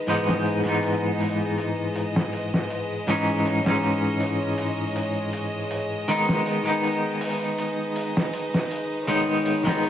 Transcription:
Already playing: G#3 B4
0.07 G#2 E3 G#3 B3 D#4 D#5, open hi-hat
0.29 snare
0.45 open hi-hat
0.64 G#2 E3 G#3 B3, closed hi-hat
0.69 D#4
0.83 open hi-hat
1.20 open hi-hat
1.58 open hi-hat
1.95 open hi-hat
2.16 snare
2.33 open hi-hat
2.54 snare
2.70 open hi-hat
3.07 G#2 E3 G#3 C#4 D#4 C#5, open hi-hat
3.45 open hi-hat
3.63 G#2 E3 G#3 C#4, snare
3.68 D#4
3.83 open hi-hat
4.20 open hi-hat
4.58 open hi-hat
4.96 open hi-hat
5.33 open hi-hat
5.71 open hi-hat
6.08 D#3 G#3 B3 D#4 B4, open hi-hat
6.29 snare
6.46 open hi-hat
6.63 D#3 G#3 B3, closed hi-hat
6.69 D#4
6.83 open hi-hat
7.21 open hi-hat
7.58 open hi-hat
7.96 open hi-hat
8.17 snare
8.33 open hi-hat
8.54 snare
8.71 open hi-hat
9.07 D#3 G#3 B3 D#4 C#5, open hi-hat
9.46 open hi-hat
9.63 D#3 G#3 B3, snare
9.69 D#4
9.83 open hi-hat

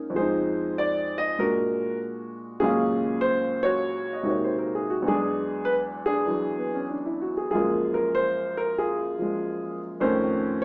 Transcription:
Already playing: A#2 G#3 A#3 C#4 D#4
0.10 F2
0.14 F3 G#3 G#4 C5
0.21 D#4
0.78 D5
1.18 D#5
1.39 A#2 G#3 D4 F#4 A#4
2.60 D#2 A#2 F#3 G#3 C#4 G#4
2.64 C#3 F5
3.21 C5
3.63 F#4 C#5
4.13 D#5
4.22 C3 G#3 A#3 D#4 F#4
4.29 C#5
4.44 C5
4.59 A#4
4.75 G#4
4.90 F#4
5.02 E2 D3 F#3
5.07 G#3 D4 G#4
5.65 B4
6.06 D4 G#4
6.26 D3 E3 F#3
6.58 B3
6.75 C#4
6.90 D4
7.06 E4
7.22 F#4
7.37 G#4
7.51 F#2 F3 F4 G#4
7.55 G#3 A#3
7.94 A#4
8.15 C5
8.57 A#4
8.78 F4 G#4
9.19 F3 G#3
10.00 F2 D#3 A3 C#4 A4 C5

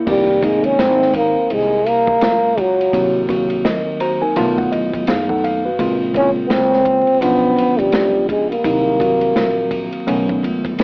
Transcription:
Already playing: E4
0.06 F1 D#3 G3 A#3 C4 G4, kick, crash
0.42 D#3 G#3 A#3 C4 D#4, kick, ride
0.64 C#4, ride
0.79 G#1 C4, snare, hi-hat pedal, ride
1.02 snare
1.14 A#3, kick, ride
1.36 muted upright bass stroke
1.50 C2 G#3, ride
1.86 A#3, ride
2.07 kick
2.21 C#2, snare, hi-hat pedal, ride
2.58 F#3, kick, ride
2.81 ride
2.93 C2 D#3 F#3 A#3 C4 F#4, kick, ride
3.28 D3 F#3 A#3 C4 F#4, kick, ride
3.35 D#3
3.50 ride
3.65 D#2 A#4 D#5, snare, hi-hat pedal, ride
4.00 F#4 C5 A#5, ride
4.22 D#4 A#4 G#5, muted upright bass stroke
4.36 B1 D3 F#3 A3 B3 F4 A5, ride
4.42 D#3
4.58 F#5, kick
4.72 A1 D#5, ride
4.93 kick, ride
5.07 F#1 D#4 G#4 F5, snare, hi-hat pedal, ride
5.29 D#4 A4 F#5, kick
5.44 F5, ride
5.65 F#4 B4
5.79 A#1 C#3 G#3 A#3 C4 F4, kick, ride
6.14 C#3 G#3 A#3 C4 C#4 E4, kick, ride
6.22 F4
6.47 C#2 B3, snare, hi-hat pedal, ride
6.51 C4
6.73 snare
6.85 kick, ride
7.07 muted upright bass stroke, ride
7.21 B1 F3 B3 C#4 D4 F4, ride
7.57 D2, ride
7.79 G3, kick, ride
7.92 C#2, snare, hi-hat pedal, ride
8.28 G#3, kick, ride
8.50 A#3, ride
8.63 C2 D#3 F#3 A#3 C4 D#4, kick, ride
8.99 D#3 F#3 A#3 C4 F#4, kick, ride
9.21 ride
9.36 A#1, snare, hi-hat pedal, ride
9.71 kick, ride
9.92 muted upright bass stroke, ride
10.06 B1 C#3 F#3 A3 B3 C#4, ride
10.13 D#3
10.29 kick
10.43 C#2, ride
10.65 kick, ride
10.78 B1, snare, hi-hat pedal, ride

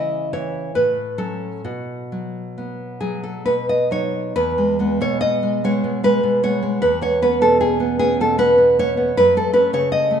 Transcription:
Already playing: C#3 E3 E4 D#5
0.33 E3 C#5
0.75 A2 B4
1.18 F#3 C#4 A4
1.64 B2 F#4
2.12 F#3
2.58 B3
3.00 F#3 G#4
3.23 A4
3.46 B2 B4
3.69 D#5
3.91 F#3 D#4 C#5
4.36 E2 B4
4.58 G#3
4.79 G#3 B3
5.01 B2 C#5
5.21 D#5
5.43 G#3
5.64 G#3 B3 C#5
5.84 B2
6.04 G#3 B4
6.23 B2
6.43 G#3 B3 C#5
6.62 G#3
6.82 E2 B4
7.02 B3 C#5
7.22 B3 C#4 B4
7.41 B2 A4
7.61 G#4
7.80 B3
7.99 B3 C#4 G#4
8.20 B2 A4
8.38 B3 B4
8.58 B2
8.79 B3 C#4 C#5
8.97 B3
9.17 F#2 B4
9.37 A3 A4
9.53 A3 C#4 B4
9.73 C#3 C#5
9.92 D#5
10.11 A3

